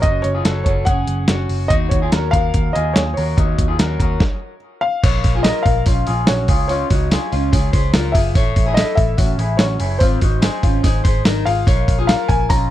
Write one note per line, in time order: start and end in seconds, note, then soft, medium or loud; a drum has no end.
0.02 0.21 F#1 loud
0.02 0.34 C#4 medium
0.02 0.33 F#4 medium
0.02 0.25 D#5 medium
0.02 kick loud
0.02 closed hi-hat medium
0.22 0.42 F#1 medium
0.22 0.62 C#5 loud
0.22 closed hi-hat medium
0.35 0.46 F4 medium
0.35 0.45 G#4 medium
0.45 0.63 F#1 medium
0.45 0.66 F#4 medium
0.45 0.65 A4 medium
0.45 snare medium
0.45 closed hi-hat medium
0.64 0.84 F#1 medium
0.64 0.88 F#4 medium
0.64 0.87 A4 medium
0.64 0.85 C#5 medium
0.64 kick medium
0.64 closed hi-hat medium
0.85 1.04 F#1 loud
0.85 1.27 C#4 medium
0.85 1.27 G#4 medium
0.85 1.45 F#5 medium
0.85 kick medium
0.85 closed hi-hat medium
1.07 1.25 F#1 medium
1.07 closed hi-hat medium
1.28 1.46 F#1 medium
1.28 1.69 C#4 medium
1.28 1.68 F#4 medium
1.28 snare loud
1.28 closed hi-hat medium
1.49 1.67 F#1 medium
1.49 open hi-hat medium
1.68 1.88 D#2 loud
1.68 2.01 D#4 medium
1.68 2.00 F#4 medium
1.68 1.73 D#5 loud
1.68 kick loud
1.68 closed hi-hat medium
1.89 2.09 D#2 medium
1.89 2.33 C#5 medium
1.89 kick medium
1.89 closed hi-hat medium
2.02 2.13 F4 medium
2.02 2.12 G#4 medium
2.12 2.30 D#2 medium
2.12 2.33 F#4 medium
2.12 2.32 A#4 medium
2.12 snare medium
2.12 closed hi-hat medium
2.31 2.50 D#2 loud
2.31 2.73 F#4 medium
2.31 2.72 A#4 medium
2.31 2.71 F5 loud
2.31 kick medium
2.31 closed hi-hat medium
2.54 2.71 D#2 loud
2.54 kick medium
2.54 closed hi-hat medium
2.73 2.93 D#2 medium
2.73 3.14 F4 medium
2.73 3.14 G#4 medium
2.73 2.96 D#5 medium
2.73 closed hi-hat medium
2.93 3.13 D#2 medium
2.93 2.98 C#5 medium
2.93 snare loud
2.93 closed hi-hat medium
3.14 3.38 A#4 medium
3.14 4.57 C#5 medium
3.14 open hi-hat medium
3.18 3.34 D#2 loud
3.18 3.36 F#4 medium
3.37 3.55 D#2 loud
3.37 3.67 D#4 medium
3.37 3.67 F#4 medium
3.37 kick loud
3.37 closed hi-hat medium
3.58 3.76 D#2 loud
3.58 kick medium
3.58 closed hi-hat medium
3.68 3.79 F4 medium
3.68 3.79 G#4 medium
3.79 3.97 D#2 loud
3.79 4.00 F#4 medium
3.79 3.99 A#4 medium
3.79 snare medium
3.79 closed hi-hat medium
4.00 4.17 D#2 loud
4.00 4.21 F#4 medium
4.00 4.21 A#4 medium
4.00 kick medium
4.00 closed hi-hat medium
4.20 kick medium
4.20 snare medium
4.81 5.46 F5 loud
5.04 5.21 A#1 loud
5.04 5.33 A#4 medium
5.04 5.33 C#5 medium
5.04 kick loud
5.04 open hi-hat medium
5.04 crash loud
5.24 5.50 A#1 medium
5.24 kick medium
5.24 open hi-hat medium
5.35 5.45 F4 medium
5.35 5.45 G#4 medium
5.43 5.85 F4 medium
5.43 5.84 A#4 medium
5.43 5.63 D#5 medium
5.43 snare loud
5.43 open hi-hat medium
5.63 5.83 A#1 loud
5.63 6.23 F5 medium
5.63 kick medium
5.63 open hi-hat medium
5.86 6.04 A#1 medium
5.86 6.08 C#4 medium
5.86 6.07 F4 medium
5.86 kick medium
5.86 open hi-hat medium
6.07 6.25 A#1 medium
6.07 6.27 F4 medium
6.07 6.28 G#4 medium
6.07 open hi-hat medium
6.27 6.49 A#1 medium
6.27 6.49 C#4 medium
6.27 6.49 F#4 medium
6.27 6.66 C#5 medium
6.27 snare loud
6.27 open hi-hat medium
6.48 6.83 C#2 medium
6.48 6.68 F4 medium
6.48 6.70 G#4 medium
6.48 kick loud
6.48 open hi-hat medium
6.68 6.91 C#4 medium
6.68 6.90 F4 loud
6.68 7.89 C#5 medium
6.68 open hi-hat medium
6.90 7.16 C#2 loud
6.90 7.12 D#4 medium
6.90 7.11 F#4 medium
6.90 kick medium
6.90 open hi-hat medium
7.11 7.31 F4 medium
7.11 7.32 G#4 medium
7.11 snare medium
7.11 open hi-hat medium
7.32 7.49 C#2 loud
7.32 7.53 C#4 medium
7.32 7.52 F4 medium
7.32 open hi-hat medium
7.52 7.70 C#2 loud
7.52 7.73 F4 medium
7.52 7.73 G#4 medium
7.52 kick loud
7.52 open hi-hat medium
7.73 7.91 C#2 medium
7.73 7.94 G#4 medium
7.73 7.94 C5 medium
7.73 kick loud
7.73 open hi-hat medium
7.94 8.12 C#2 medium
7.94 8.14 F4 medium
7.94 8.15 A#4 medium
7.94 snare loud
7.94 open hi-hat medium
8.12 8.36 F#1 medium
8.12 8.36 F4 medium
8.12 8.36 G#4 medium
8.12 8.78 E5 medium
8.12 kick medium
8.12 open hi-hat medium
8.35 8.53 A1 loud
8.35 8.65 A4 medium
8.35 8.65 C#5 loud
8.35 kick loud
8.35 open hi-hat medium
8.56 8.82 A1 loud
8.56 kick medium
8.56 open hi-hat medium
8.66 8.76 E4 medium
8.66 8.76 G#4 medium
8.74 9.16 E4 medium
8.74 9.16 A4 medium
8.74 8.97 D#5 medium
8.74 snare medium
8.74 open hi-hat medium
8.95 9.15 A1 medium
8.95 9.55 E5 loud
8.95 kick medium
8.95 open hi-hat medium
9.17 9.36 A1 loud
9.17 9.39 C#4 medium
9.17 9.38 F#4 medium
9.17 kick medium
9.17 open hi-hat medium
9.38 9.56 A1 medium
9.38 9.60 E4 medium
9.38 9.59 G#4 medium
9.38 open hi-hat medium
9.57 9.77 A1 medium
9.57 9.81 C#4 medium
9.57 9.80 F#4 medium
9.57 10.01 C#5 medium
9.57 snare loud
9.57 open hi-hat medium
9.80 9.97 F#1 medium
9.80 10.02 E4 medium
9.80 10.01 G#4 medium
9.80 open hi-hat medium
9.99 10.18 G#1 loud
9.99 10.22 C4 medium
9.99 10.21 F4 loud
9.99 11.20 C5 medium
9.99 kick loud
9.99 open hi-hat medium
10.21 10.48 G#1 loud
10.21 10.42 D#4 medium
10.21 10.42 F#4 medium
10.21 kick medium
10.21 open hi-hat medium
10.42 10.62 D#4 medium
10.42 10.63 G#4 medium
10.42 snare loud
10.42 open hi-hat medium
10.63 10.81 G#1 loud
10.63 10.84 C#4 medium
10.63 10.84 F4 medium
10.63 kick medium
10.63 open hi-hat medium
10.83 11.01 G#1 medium
10.83 11.05 D#4 medium
10.83 11.03 G#4 medium
10.83 kick medium
10.83 snare soft
10.83 open hi-hat medium
11.04 11.22 G#1 medium
11.04 11.26 G#4 medium
11.04 11.25 C5 medium
11.04 kick medium
11.04 open hi-hat medium
11.25 11.43 G#1 medium
11.25 11.46 D#4 medium
11.25 11.46 A#4 medium
11.25 snare loud
11.25 open hi-hat medium
11.45 11.64 G#1 medium
11.45 11.67 F4 medium
11.45 11.67 G#4 medium
11.45 12.06 F5 medium
11.45 open hi-hat medium
11.67 11.84 A#1 loud
11.67 11.97 A#4 medium
11.67 11.96 C#5 medium
11.67 kick loud
11.67 open hi-hat medium
11.88 12.13 A#1 medium
11.88 kick medium
11.88 open hi-hat medium
11.99 12.08 F4 medium
11.99 12.09 G#4 medium
12.07 12.48 F4 medium
12.07 12.47 A#4 medium
12.07 12.29 F5 medium
12.07 snare loud
12.07 open hi-hat medium
12.29 12.46 A#1 loud
12.29 12.48 G#5 loud
12.29 kick medium
12.29 open hi-hat medium
12.49 12.67 A#1 medium
12.49 12.70 C#4 medium
12.49 12.70 F4 medium
12.49 12.70 A#5 loud
12.49 kick medium
12.49 open hi-hat medium